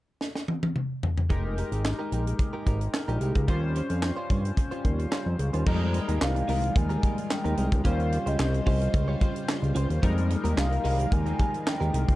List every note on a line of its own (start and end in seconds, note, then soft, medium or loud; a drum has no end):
0.21 snare medium
0.35 snare medium
0.48 high tom medium
0.63 high tom medium
0.76 mid tom medium
1.03 floor tom medium
1.18 floor tom loud
1.29 1.64 F1 medium
1.29 3.44 G#3 medium
1.29 1.46 G#3 medium
1.29 3.44 D#4 medium
1.29 1.45 D#4 medium
1.29 3.44 G4 medium
1.29 1.44 G4 medium
1.29 3.45 A#4 medium
1.29 1.43 A#4 medium
1.29 kick loud
1.29 closed hi-hat medium
1.44 muted clean electric guitar stroke soft
1.57 1.70 G#3 medium
1.57 1.70 D#4 medium
1.57 1.70 G4 medium
1.57 1.70 A#4 medium
1.57 closed hi-hat medium
1.72 1.94 G#1 medium
1.72 1.84 G#3 soft
1.72 1.83 D#4 medium
1.72 1.83 G4 medium
1.72 1.83 A#4 medium
1.72 closed hi-hat medium
1.85 snare loud
1.85 clap medium
1.99 2.11 G#3 medium
1.99 2.11 D#4 medium
1.99 2.12 G4 medium
1.99 2.12 A#4 medium
2.12 2.34 A#1 medium
2.12 2.24 G#3 medium
2.12 2.24 D#4 medium
2.12 2.25 G4 medium
2.12 2.25 A#4 medium
2.12 closed hi-hat medium
2.26 muted clean electric guitar stroke soft
2.26 closed hi-hat medium
2.39 muted clean electric guitar stroke soft
2.39 kick loud
2.39 closed hi-hat medium
2.53 2.65 G#3 soft
2.53 2.65 D#4 medium
2.53 2.65 G4 medium
2.53 2.64 A#4 medium
2.66 2.88 G#1 medium
2.66 2.82 G#3 medium
2.66 2.81 D#4 medium
2.66 2.80 G4 medium
2.66 2.80 A#4 loud
2.66 kick medium
2.66 closed hi-hat medium
2.81 muted clean electric guitar stroke soft
2.81 closed hi-hat soft
2.94 muted clean electric guitar stroke soft
2.94 snare loud
2.94 clap medium
3.08 3.19 A#1 loud
3.08 3.20 G#3 medium
3.08 3.20 D#4 medium
3.08 3.21 G4 medium
3.08 3.22 A#4 medium
3.08 closed hi-hat soft
3.21 3.33 C2 medium
3.21 3.33 G#3 medium
3.21 3.34 D#4 medium
3.21 3.34 G4 medium
3.21 3.34 A#4 medium
3.21 closed hi-hat medium
3.35 3.50 C#2 medium
3.35 muted clean electric guitar stroke soft
3.35 kick medium
3.35 closed hi-hat medium
3.47 3.82 D#2 loud
3.47 5.62 G3 medium
3.47 3.64 G3 medium
3.47 5.62 C#4 medium
3.47 3.62 C#4 medium
3.47 5.63 F4 medium
3.47 3.62 F4 medium
3.47 5.63 C5 medium
3.47 3.61 C5 medium
3.47 kick loud
3.47 closed hi-hat medium
3.62 muted clean electric guitar stroke soft
3.75 3.88 G3 medium
3.75 3.88 C#4 medium
3.75 3.88 F4 medium
3.75 3.88 C5 medium
3.75 closed hi-hat medium
3.89 4.12 F2 medium
3.89 4.01 G3 soft
3.89 4.01 C#4 medium
3.89 4.01 F4 medium
3.89 4.01 C5 medium
3.89 closed hi-hat soft
4.02 muted clean electric guitar stroke soft
4.02 snare loud
4.02 clap medium
4.16 4.28 G3 medium
4.16 4.29 C#4 medium
4.16 4.29 F4 medium
4.16 4.30 C5 medium
4.29 4.52 G2 medium
4.29 4.42 G3 medium
4.29 4.42 C#4 medium
4.29 4.43 F4 medium
4.29 4.43 C5 medium
4.29 kick medium
4.29 closed hi-hat medium
4.44 muted clean electric guitar stroke soft
4.44 closed hi-hat medium
4.57 muted clean electric guitar stroke soft
4.57 kick medium
4.57 closed hi-hat medium
4.71 4.83 G3 medium
4.71 4.84 C#4 medium
4.71 4.84 F4 medium
4.71 4.85 C5 medium
4.71 closed hi-hat soft
4.85 5.07 D#2 medium
4.85 kick medium
4.85 closed hi-hat medium
4.99 muted clean electric guitar stroke soft
4.99 closed hi-hat soft
5.12 5.27 G3 medium
5.12 5.26 C#4 medium
5.12 5.26 F4 medium
5.12 5.25 C5 medium
5.12 snare loud
5.12 clap medium
5.26 5.37 F2 medium
5.26 muted clean electric guitar stroke soft
5.39 5.51 C#2 medium
5.39 muted clean electric guitar stroke soft
5.39 closed hi-hat medium
5.53 5.64 D#2 medium
5.53 5.65 G3 soft
5.53 5.65 C#4 soft
5.53 5.65 F4 medium
5.53 5.64 C5 medium
5.53 closed hi-hat medium
5.66 6.00 F2 loud
5.66 7.83 D#3 medium
5.66 7.83 F3 medium
5.66 7.81 G3 medium
5.66 7.81 G#3 medium
5.66 5.82 G#3 medium
5.66 7.83 A#3 medium
5.66 7.81 D#4 medium
5.66 5.81 D#4 medium
5.66 7.83 F4 medium
5.66 5.81 G4 medium
5.66 7.81 A#4 medium
5.66 5.80 A#4 loud
5.66 kick loud
5.66 crash medium
5.81 muted clean electric guitar stroke soft
5.94 muted clean electric guitar stroke soft
5.94 closed hi-hat medium
6.08 6.19 D#2 medium
6.08 6.20 G#3 medium
6.08 6.20 D#4 medium
6.08 6.19 G4 medium
6.08 6.19 A#4 medium
6.08 closed hi-hat medium
6.21 6.43 C2 loud
6.21 6.79 F5 loud
6.21 snare loud
6.21 clap loud
6.36 muted clean electric guitar stroke soft
6.36 closed hi-hat soft
6.48 6.70 C2 medium
6.48 6.64 G#3 medium
6.48 6.63 D#4 medium
6.48 6.62 G4 medium
6.48 6.62 A#4 loud
6.48 open hi-hat medium
6.63 muted clean electric guitar stroke soft
6.63 closed hi-hat medium
6.76 6.98 D#2 loud
6.76 7.31 G#5 loud
6.76 muted clean electric guitar stroke medium
6.76 kick loud
6.76 closed hi-hat medium
6.89 7.01 G#3 medium
6.89 7.01 D#4 medium
6.89 7.01 G4 medium
6.89 7.01 A#4 medium
6.89 closed hi-hat soft
7.02 7.18 G#3 medium
7.02 7.17 D#4 medium
7.02 7.17 G4 loud
7.02 7.16 A#4 loud
7.02 kick loud
7.02 closed hi-hat medium
7.17 muted clean electric guitar stroke soft
7.17 closed hi-hat medium
7.30 7.82 G5 loud
7.30 muted clean electric guitar stroke soft
7.30 snare loud
7.30 clap loud
7.44 7.55 D#2 loud
7.44 7.56 G#3 medium
7.44 7.57 D#4 medium
7.44 7.57 G4 medium
7.44 7.58 A#4 medium
7.44 closed hi-hat soft
7.57 7.69 C2 medium
7.57 7.70 G#3 medium
7.57 7.70 D#4 medium
7.57 7.70 G4 medium
7.57 7.70 A#4 medium
7.57 closed hi-hat medium
7.71 7.82 C#2 medium
7.71 muted clean electric guitar stroke soft
7.71 kick loud
7.71 closed hi-hat medium
7.84 8.18 D#2 loud
7.84 10.01 C#3 medium
7.84 9.99 G3 medium
7.84 10.01 G3 medium
7.84 8.00 C#4 medium
7.84 9.99 C#4 medium
7.84 7.99 F4 medium
7.84 9.99 F4 medium
7.84 10.01 F4 medium
7.84 7.98 G4 loud
7.84 10.01 C5 medium
7.84 9.99 C5 medium
7.84 7.98 C5 medium
7.84 8.30 F5 loud
7.84 kick loud
7.84 closed hi-hat medium
7.99 muted clean electric guitar stroke medium
7.99 closed hi-hat soft
8.12 muted clean electric guitar stroke soft
8.12 closed hi-hat medium
8.26 8.37 C#2 medium
8.26 8.38 C#4 medium
8.26 8.38 F4 medium
8.26 8.38 G4 medium
8.26 8.37 C5 medium
8.26 9.76 D#5 medium
8.26 closed hi-hat medium
8.39 8.61 C2 loud
8.39 snare loud
8.39 clap loud
8.54 muted clean electric guitar stroke soft
8.54 closed hi-hat soft
8.66 8.89 C2 loud
8.66 8.82 C#4 medium
8.66 8.81 F4 medium
8.66 8.80 G4 medium
8.66 8.79 C5 loud
8.66 kick medium
8.66 open hi-hat medium
8.80 muted clean electric guitar stroke medium
8.80 closed hi-hat medium
8.94 9.16 C#2 loud
8.94 muted clean electric guitar stroke soft
8.94 kick loud
8.94 closed hi-hat medium
9.08 9.19 C#4 medium
9.08 9.20 F4 medium
9.08 9.19 G4 medium
9.08 9.19 C#5 medium
9.20 9.36 C#4 medium
9.20 9.35 F4 loud
9.20 9.35 G4 medium
9.20 9.34 C5 loud
9.20 kick medium
9.20 closed hi-hat medium
9.36 closed hi-hat soft
9.48 muted clean electric guitar stroke soft
9.48 snare loud
9.48 clap medium
9.62 9.73 C#2 medium
9.62 muted clean electric guitar stroke soft
9.62 closed hi-hat soft
9.75 9.87 C#2 medium
9.75 9.91 C#4 medium
9.75 9.90 F4 loud
9.75 9.89 G4 medium
9.75 9.88 C5 loud
9.75 closed hi-hat medium
9.90 10.00 D#2 medium
9.90 muted clean electric guitar stroke medium
9.90 closed hi-hat medium
10.02 10.36 F2 loud
10.02 12.16 D#3 medium
10.02 12.16 F3 medium
10.02 12.16 G3 medium
10.02 12.16 G#3 medium
10.02 10.18 G#3 medium
10.02 12.16 A#3 medium
10.02 12.16 D#4 medium
10.02 10.17 D#4 medium
10.02 12.16 F4 medium
10.02 10.16 G4 medium
10.02 12.16 A#4 medium
10.02 10.16 A#4 loud
10.02 kick loud
10.02 closed hi-hat medium
10.17 muted clean electric guitar stroke medium
10.17 closed hi-hat soft
10.29 muted clean electric guitar stroke soft
10.29 closed hi-hat medium
10.44 10.55 D#2 medium
10.44 10.56 G#3 medium
10.44 10.56 D#4 medium
10.44 10.56 G4 medium
10.44 10.55 A#4 medium
10.44 closed hi-hat medium
10.57 10.79 C2 loud
10.57 11.14 F5 loud
10.57 snare loud
10.57 clap loud
10.71 muted clean electric guitar stroke soft
10.71 closed hi-hat soft
10.84 11.06 C2 loud
10.84 11.00 G#3 medium
10.84 10.99 D#4 medium
10.84 10.99 G4 medium
10.84 10.98 A#4 medium
10.84 open hi-hat medium
10.99 muted clean electric guitar stroke soft
10.99 closed hi-hat medium
11.11 11.34 D#2 medium
11.11 11.67 G#5 loud
11.11 muted clean electric guitar stroke soft
11.11 kick loud
11.11 closed hi-hat medium
11.26 11.38 G#3 medium
11.26 11.38 D#4 soft
11.26 11.37 G4 medium
11.26 11.37 A#4 medium
11.26 closed hi-hat soft
11.39 11.55 G#3 medium
11.39 11.53 D#4 medium
11.39 11.53 G4 medium
11.39 11.52 A#4 loud
11.39 kick medium
11.39 closed hi-hat medium
11.53 muted clean electric guitar stroke medium
11.53 closed hi-hat soft
11.66 12.16 G5 loud
11.66 muted clean electric guitar stroke medium
11.66 snare loud
11.66 clap loud
11.80 11.91 D#2 medium
11.80 11.92 G#3 medium
11.80 11.93 D#4 medium
11.80 11.94 G4 medium
11.80 11.94 A#4 medium
11.80 closed hi-hat soft
11.93 12.05 C2 medium
11.93 12.06 G#3 medium
11.93 12.06 D#4 medium
11.93 12.07 G4 medium
11.93 12.07 A#4 medium
11.93 closed hi-hat medium
12.08 12.16 C#2 medium
12.08 muted clean electric guitar stroke soft
12.08 kick loud
12.08 closed hi-hat medium